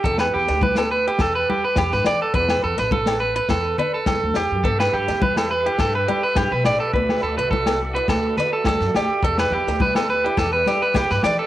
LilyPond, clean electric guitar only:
\new Staff \with { instrumentName = "Clean electric guitar" } { \time 4/4 \key e \minor \tempo 4 = 104 a'16 b'16 g'8 b'16 a'16 b'16 g'16 a'16 b'16 g'16 b'16 g'16 b'16 d''16 a'16 | b'8 a'16 b'16 a'8 b'16 b'16 a'8 b'16 a'16 a'8 g'8 | a'16 b'16 g'8 b'16 a'16 b'16 g'16 a'16 b'16 g'16 b'16 g'16 b'16 d''16 a'16 | b'8 a'16 b'16 a'8 r16 b'16 a'8 b'16 a'16 a'8 g'8 |
a'16 b'16 g'8 b'16 a'16 b'16 g'16 a'16 b'16 g'16 b'16 g'16 b'16 d''16 a'16 | }